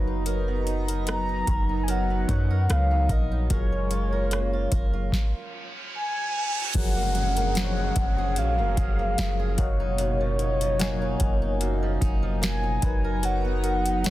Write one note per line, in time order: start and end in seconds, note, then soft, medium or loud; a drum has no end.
0.00 1.44 F#1 medium
0.00 0.25 F#3 medium
0.00 1.19 F#3 medium
0.00 3.47 F#3 medium
0.00 0.48 A#3 medium
0.00 3.47 B3 medium
0.00 1.20 D#4 medium
0.00 3.46 D#4 medium
0.00 1.20 A#4 medium
0.00 1.20 B4 loud
0.00 0.23 A#5 medium
0.00 3.46 A#5 medium
0.07 0.65 D#4 medium
0.26 1.87 F#3 medium
0.26 0.88 A#4 medium
0.26 closed hi-hat medium
0.48 1.06 B3 medium
0.66 1.28 D#4 medium
0.66 closed hi-hat soft
0.88 1.47 A#4 medium
0.88 closed hi-hat medium
1.07 2.09 B3 medium
1.07 1.85 A#5 loud
1.07 cross-stick loud
1.07 closed hi-hat medium
1.29 1.68 D#4 medium
1.47 2.26 F#1 loud
1.47 1.88 A#4 medium
1.47 kick loud
1.47 closed hi-hat medium
1.69 2.27 D#4 medium
1.83 1.92 G#5 medium
1.88 3.59 F#3 medium
1.88 2.50 A#4 medium
1.88 2.73 F#5 loud
1.88 closed hi-hat medium
2.10 2.68 B3 medium
2.28 2.68 F#2 loud
2.28 3.30 F#3 medium
2.28 2.90 D#4 medium
2.28 3.30 D#4 medium
2.28 3.31 A#4 medium
2.28 3.31 C#5 medium
2.28 kick loud
2.28 closed hi-hat medium
2.51 3.09 A#4 medium
2.69 3.08 C#2 loud
2.69 3.59 B3 medium
2.69 3.14 F5 loud
2.69 cross-stick loud
2.69 closed hi-hat medium
2.91 3.30 D#4 medium
3.09 3.48 A#1 loud
3.09 3.50 A#4 medium
3.09 3.51 D#5 medium
3.09 kick medium
3.09 closed hi-hat medium
3.32 3.59 D#4 medium
3.50 4.68 F#1 loud
3.50 5.21 A#2 medium
3.50 4.84 F#3 medium
3.50 5.11 G#3 medium
3.50 5.11 A#3 medium
3.50 5.11 C#4 medium
3.50 4.85 F4 medium
3.50 4.85 G#4 medium
3.50 4.12 A#4 medium
3.50 4.86 C#5 medium
3.50 5.10 C#5 medium
3.50 kick loud
3.50 closed hi-hat medium
3.72 5.71 C#4 medium
3.91 4.53 F4 medium
3.91 closed hi-hat medium
4.12 4.71 A#4 medium
4.31 5.71 A#3 medium
4.31 cross-stick loud
4.31 closed hi-hat medium
4.53 4.93 F4 medium
4.72 5.11 F#1 loud
4.72 5.71 A#4 medium
4.72 kick loud
4.72 closed hi-hat medium
4.93 5.71 F4 medium
5.12 kick loud
5.12 snare medium
5.12 reverse cymbal medium
5.95 6.78 G#5 loud
6.74 7.92 F#1 loud
6.74 7.43 F3 medium
6.74 7.42 F#3 medium
6.74 8.36 F#3 medium
6.74 9.55 G#3 medium
6.74 9.55 C#4 medium
6.74 9.55 G#4 medium
6.74 7.43 G#4 medium
6.74 9.55 A#4 medium
6.74 7.43 A#4 medium
6.74 8.40 F#5 loud
6.74 kick loud
6.74 closed hi-hat medium
6.74 crash medium
6.74 downlifter medium
6.96 7.37 A#3 medium
7.15 7.76 G#4 medium
7.15 closed hi-hat soft
7.37 8.58 A#3 medium
7.37 closed hi-hat medium
7.55 8.90 F3 medium
7.55 8.90 F#3 medium
7.55 8.91 G#4 medium
7.55 7.64 C5 medium
7.55 snare loud
7.55 closed hi-hat medium
7.64 8.94 C#5 medium
7.77 8.17 G#4 medium
7.96 8.39 F#1 loud
7.96 kick loud
7.96 closed hi-hat medium
8.18 8.76 G#4 medium
8.36 8.60 A#1 medium
8.36 10.20 F#3 medium
8.36 9.62 F5 loud
8.36 closed hi-hat medium
8.59 8.76 F#1 loud
8.59 8.99 A#3 medium
8.77 9.16 F#1 loud
8.77 9.38 G#4 medium
8.77 kick loud
8.77 closed hi-hat medium
8.99 10.79 A#3 medium
9.18 9.57 F#1 loud
9.18 9.80 F4 medium
9.18 snare loud
9.18 closed hi-hat medium
9.39 9.67 G#4 medium
9.58 11.16 F#1 loud
9.58 9.97 F#2 medium
9.58 12.79 B2 medium
9.58 10.60 F#3 medium
9.58 12.79 A#3 medium
9.58 14.10 D#4 medium
9.58 10.60 A#4 medium
9.58 10.60 C#5 medium
9.58 12.03 C#5 medium
9.58 10.61 D#5 medium
9.58 10.61 F5 medium
9.58 10.60 F#5 medium
9.58 kick loud
9.58 closed hi-hat medium
9.80 10.39 D#4 medium
9.98 11.60 F#2 medium
9.98 closed hi-hat medium
10.21 10.60 F3 medium
10.39 11.01 D#4 medium
10.39 closed hi-hat soft
10.61 11.81 F3 medium
10.61 closed hi-hat medium
10.79 12.14 F#3 medium
10.79 11.20 A#3 medium
10.79 12.14 A#4 medium
10.79 12.14 C#5 medium
10.79 12.15 D#5 medium
10.79 12.14 F#5 medium
10.79 12.15 G#5 loud
10.79 snare loud
10.79 closed hi-hat medium
11.02 11.42 D#4 medium
11.20 11.98 F#1 loud
11.20 12.41 A#3 medium
11.20 kick loud
11.20 closed hi-hat medium
11.42 12.01 D#4 medium
11.61 12.91 F#2 medium
11.61 closed hi-hat medium
11.83 12.21 F3 medium
12.01 12.79 F#1 loud
12.01 12.63 D#4 medium
12.01 kick loud
12.01 closed hi-hat medium
12.23 12.82 F3 medium
12.42 13.44 A#3 medium
12.42 13.27 G#5 medium
12.42 snare loud
12.42 closed hi-hat medium
12.63 14.03 D#4 medium
12.82 14.10 F#1 loud
12.82 13.84 F#3 medium
12.82 13.22 F#3 medium
12.82 14.10 F#3 medium
12.82 14.10 B3 medium
12.82 13.84 D#4 medium
12.82 13.85 A#4 medium
12.82 13.85 B4 medium
12.82 14.10 A#5 medium
12.82 kick loud
12.82 closed hi-hat medium
13.04 13.63 A#4 medium
13.23 14.10 F#3 medium
13.23 14.10 F#5 loud
13.23 closed hi-hat medium
13.45 13.84 B3 medium
13.63 14.10 A#4 medium
13.63 closed hi-hat soft
13.85 14.10 B3 medium
13.85 closed hi-hat medium
14.04 14.10 F#3 medium
14.04 14.10 D#4 medium
14.04 14.10 A#4 medium
14.04 14.10 C#5 medium
14.04 snare loud
14.04 closed hi-hat medium